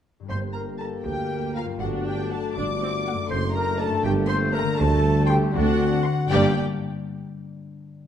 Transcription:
0.20 harp G2 G3
0.24 harp D4 A#4
0.30 tuba G1, double bass section G1, cello section G2, french horn section A#3 G4, clarinet C5, violin section C6, flute section C6
0.53 clarinet A#4, violin section A#5, flute section A#5
0.79 clarinet A4, violin section A5 A#5, flute section A5
1.04 cello section D2, double bass section D2, tuba D2, viola section A#3, clarinet G4, violin section G5, flute section G5
1.55 clarinet F4, flute section F5, violin section F5 A#5
1.63 harp G2
1.67 harp F#3
1.72 harp D4
1.76 double bass section G1, tuba G1, cello section G2, harp A4
1.80 french horn section A3 F#4, viola section D4, clarinet F#4, violin section F#5, flute section F#5
2.06 clarinet G4, flute section G5, violin section G5
2.31 clarinet A4, violin section F#5 A5, flute section A5
2.57 tuba G1, double bass section G1, cello section G2, viola section D4, clarinet D5, flute section D6, violin section D6
2.82 viola section C4
3.06 viola section A#3, violin section F#5
3.13 harp F#2
3.18 harp A3
3.22 harp D4
3.27 double bass section F#1, viola section A3, harp A4, clarinet C5, violin section C6
3.31 tuba F#1, cello section F#2, french horn section D4, flute section C6
3.55 clarinet A#4, violin section A#5, flute section A#5
3.79 clarinet A4, violin section D5 A5, flute section A5
3.87 harp G2
3.92 harp A#3
3.96 harp D4
4.01 double bass section G1, french horn section A#3, harp G4, violin section G5
4.05 tuba G1, cello section G2, clarinet G4, flute section G5
4.28 clarinet C5, violin section C6, flute section C6
4.53 clarinet A#4, violin section A#5, flute section A#5
4.62 harp D3
4.66 harp C4
4.71 harp D4
4.76 double bass section D2, french horn section G3, harp G4, clarinet A4, violin section A5, flute section A5
4.80 tuba D2, cello section D2
5.27 clarinet G4, violin section G5 C6, flute section G5
5.37 harp D3
5.42 harp C4
5.46 harp D4
5.51 viola section D4, harp A4, violin section F#5
5.55 double bass section D2, tuba D2, cello section D2, french horn section A3 C4, clarinet F#4, flute section F#5
6.05 violin section C6
6.26 harp G2 G3, violin section G5
6.30 double bass section G1, tuba G1, cello section G2, harp A#3 D4, viola section A#3 G4, french horn section A#3 D4, clarinet G4, violin section D5, flute section G5
6.34 harp G4 D5

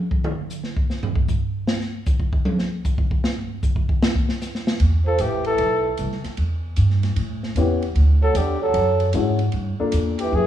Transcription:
0.11 kick
0.24 mid tom
0.50 hi-hat pedal
0.64 snare
0.77 kick
0.90 snare
1.03 floor tom
1.15 kick
1.28 kick, hi-hat pedal
1.67 snare
1.81 snare
2.06 kick, hi-hat pedal
2.20 kick
2.33 kick
2.45 high tom
2.59 snare
2.85 kick, hi-hat pedal
2.98 kick
3.11 kick
3.24 snare
3.37 floor tom
3.63 kick, hi-hat pedal
3.76 kick
3.89 kick
4.02 snare
4.15 kick
4.29 snare
4.41 snare, hi-hat pedal
4.55 snare
4.67 snare
4.80 upright bass E2, kick, ride
5.06 trombone F3, trumpet A4
5.18 upright bass A1, trombone E3, trumpet G4, hi-hat pedal, ride
5.44 trombone E3, trumpet A4, ride
5.58 upright bass B1, ride
5.97 upright bass C2, hi-hat pedal, ride
6.12 snare
6.24 muted upright bass stroke, snare, ride
6.37 upright bass E2, ride
6.76 upright bass G2, hi-hat pedal, ride
6.90 snare
7.03 snare, ride
7.16 upright bass A2, ride
7.43 snare
7.55 upright bass E2, grand piano B3 C#4 E4 G4, hi-hat pedal, ride
7.82 ride
7.95 upright bass D2, ride
8.22 trombone F#3, trumpet A4
8.34 upright bass E2, trombone D3, trumpet G4, hi-hat pedal, ride
8.61 trombone F#3, trumpet A4
8.74 upright bass F#2, ride
9.00 ride
9.13 upright bass G#2, grand piano G#3 C#4 E4 F#4, hi-hat pedal, ride
9.39 ride
9.52 upright bass G2, ride
9.80 grand piano A#3 D4 F4 A4, muted upright bass stroke
9.92 upright bass E2, hi-hat pedal, ride
10.19 trombone E3, trumpet G4, ride
10.32 upright bass F#2, trombone E3, trumpet G#4

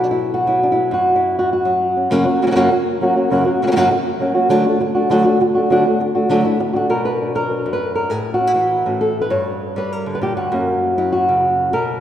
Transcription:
Already playing: nylon-string guitar B2 F#3 B3 F#4
0.04 nylon-string guitar D4
0.11 nylon-string guitar E4
0.34 nylon-string guitar F#4
0.47 nylon-string guitar F#3 E4
0.63 nylon-string guitar D4
0.72 nylon-string guitar E4
0.77 nylon-string guitar B3
0.91 nylon-string guitar F#2 F#4
1.16 nylon-string guitar E4
1.39 nylon-string guitar F#4
1.53 nylon-string guitar F#4
1.65 nylon-string guitar F#3
1.97 nylon-string guitar C#4
2.10 nylon-string guitar F#2 C#3 F#3 A#3 C#4 F#4
2.26 nylon-string guitar F#3 A#3 C#4 F#4
2.42 nylon-string guitar C#3 F#3 A#3 C#4 F#4
2.47 nylon-string guitar C#3 F#3 A#3 C#4 F#4
2.51 nylon-string guitar C#3 F#3 A#3 C#4 F#4
2.55 nylon-string guitar F#2 C#3 F#3 A#3 C#4 F#4
2.72 muted nylon-string guitar stroke
3.01 nylon-string guitar F#3 A#3 C#4 F#4
3.16 nylon-string guitar F#3 A#3 C#4 F#4
3.30 nylon-string guitar F#2 C#3 F#3 A#3 C#4 F#4
3.45 nylon-string guitar F#3 A#3 C#4 F#4
3.62 nylon-string guitar C#3 F#3 A#3 C#4 F#4
3.67 nylon-string guitar C#3 F#3 A#3 C#4 F#4
3.71 nylon-string guitar C#3 F#3 A#3 C#4 F#4
3.76 nylon-string guitar F#2 C#3 F#3 A#3 C#4 F#4
3.91 muted nylon-string guitar stroke
4.20 nylon-string guitar F#3 A#3 C#4 F#4
4.34 nylon-string guitar F#3 A#3 C#4 F#4
4.49 nylon-string guitar D3 F#3 A3 D4 F#4
4.65 nylon-string guitar A3 D4 F#4
4.80 muted nylon-string guitar stroke
4.95 nylon-string guitar A3 D4 F#4
5.10 nylon-string guitar D3 F#3 A3 D4 F#4
5.25 nylon-string guitar A3 D4 F#4
5.40 muted nylon-string guitar stroke
5.55 nylon-string guitar A3 D4 F#4
5.70 nylon-string guitar D3 F#3 A3 D4 F#4
5.88 nylon-string guitar A3
6.00 muted nylon-string guitar stroke
6.15 nylon-string guitar A3 D4 F#4
6.29 nylon-string guitar D3 F#3 A3 D4 F#4
6.44 nylon-string guitar A3 D4 E4 F#4
6.59 muted nylon-string guitar stroke
6.73 nylon-string guitar A3 D4 F#4
6.90 nylon-string guitar B2 A#4
7.05 nylon-string guitar B4
7.21 nylon-string guitar D4
7.35 nylon-string guitar F#3 A#4
7.51 nylon-string guitar D4
7.66 nylon-string guitar F#2
7.73 nylon-string guitar B4
7.95 nylon-string guitar A#4
8.10 nylon-string guitar A2 G#4
8.34 nylon-string guitar F#4
8.40 nylon-string guitar C#4
8.47 nylon-string guitar E4
8.55 nylon-string guitar E3 E4
8.86 nylon-string guitar A2 C#4
9.01 nylon-string guitar A4
9.22 nylon-string guitar B4
9.30 nylon-string guitar G2 C#5
9.76 nylon-string guitar G3 B4
9.93 nylon-string guitar A#4
10.06 nylon-string guitar D3
10.15 nylon-string guitar B4
10.21 nylon-string guitar A#2 G4
10.37 nylon-string guitar G2 F#4
10.52 nylon-string guitar F#2 A#3 C#4
10.98 nylon-string guitar F#3 E4
11.12 nylon-string guitar F#4
11.29 nylon-string guitar C#3
11.73 nylon-string guitar B2 A#4

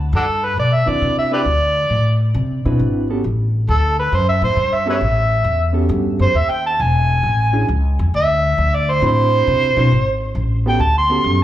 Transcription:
0.13 upright bass G2, harmonica D4 F#4 A4
0.45 harmonica B4
0.57 upright bass B2, harmonica D5
0.74 harmonica E5
0.86 upright bass D3, reed electric piano C4 D4 E4 F#4 B4, harmonica D5
1.02 upright bass C3
1.18 harmonica E5
1.31 reed electric piano C4 D4 E4 F#4 B4, harmonica G4 B4 D5
1.45 upright bass D2
1.90 upright bass A2
2.34 upright bass C3
2.65 upright bass B2, reed electric piano C4 D4 E4 F#4 B4
2.79 upright bass G#1
3.10 reed electric piano B3 C#4 F#4 G4 A4
3.24 upright bass A1
3.68 upright bass D2, harmonica A4
3.99 harmonica B4
4.12 upright bass F#2, harmonica C5
4.29 harmonica E5
4.42 upright bass A2, harmonica C5
4.56 upright bass G2
4.74 harmonica E5
4.86 reed electric piano B3 C#4 F#4 G4 A4, harmonica B4 C#5 E5
5.01 upright bass A1
5.44 upright bass E2
5.73 reed electric piano B3 C#4 F#4 G4 A4
5.89 upright bass G2
6.19 upright bass F#2, harmonica C5
6.34 upright bass D#2, harmonica E5
6.51 harmonica G5
6.66 harmonica A5
6.79 upright bass E1, harmonica G#5
7.23 upright bass A1
7.53 reed electric piano C#4 D4 E4 F#4 G#4
7.68 upright bass C#2
7.99 upright bass E2
8.14 upright bass D2, harmonica E5
8.58 upright bass D2
8.75 harmonica D5
8.91 harmonica C5
9.02 upright bass A2, reed electric piano C4 D4 E4 F#4 B5
9.06 harmonica C5
9.47 upright bass C3
9.77 upright bass B2, reed electric piano C4 D4 E4 F#4 B4
9.91 upright bass G#1
10.35 upright bass A1
10.66 reed electric piano B3 C#4 F#4 G4 A4, harmonica G5
10.79 upright bass D2, harmonica A5
10.98 harmonica C6
11.10 reed electric piano B3 C#4 F#4 G4 A4
11.24 upright bass F#2

